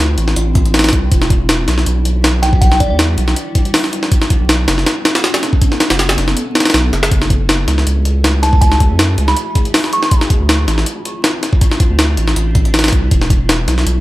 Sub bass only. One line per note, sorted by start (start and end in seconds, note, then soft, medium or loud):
0.00 0.16 D2 medium
0.18 0.35 A1 loud
0.36 0.91 A1 medium
0.93 1.10 C2 loud
1.12 1.66 E1 loud
1.68 1.85 B1 loud
1.86 2.92 B1 medium
2.90 3.16 E2 medium
3.18 3.35 B1 medium
4.40 4.66 B1 medium
4.68 4.85 F#1 medium
5.90 6.16 F#1 medium
6.18 6.35 F#1 loud
6.74 6.91 B1 loud
6.93 7.10 F#1 medium
7.11 7.66 F#1 loud
7.68 7.85 C#2 loud
7.87 8.92 C#2 medium
8.90 9.16 F#2 medium
9.18 9.35 C#2 loud
10.40 10.66 D2 medium
10.67 10.85 A1 medium
11.90 12.16 D2 medium
12.17 12.34 A1 loud
12.36 12.91 A1 medium
12.93 13.10 C2 loud
13.11 13.66 E1 loud
13.67 13.85 B1 loud
13.86 14.00 B1 medium